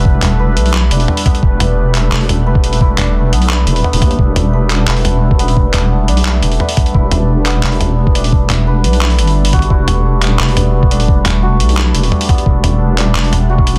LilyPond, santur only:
\new Staff \with { instrumentName = "Santur" } { \time 4/4 \key e \minor \tempo 4 = 174 r4 b'8 r8 e'8 d'4 b8~ | b4. r4. b'8 r8 | e'8 d'4 b4. b8 r8 | r4 b'8 r8 e'8 r4 b8~ |
b4. d'4. b'8 r8 | e'8 r4 b2 d'8~ | d'4 b'8 r8 e'8 r4 fis'8 | e'8 r4 b2 d'8~ |
d'4 fis'4 e'8 r4 b8~ | b4. d'4. fis'4 | }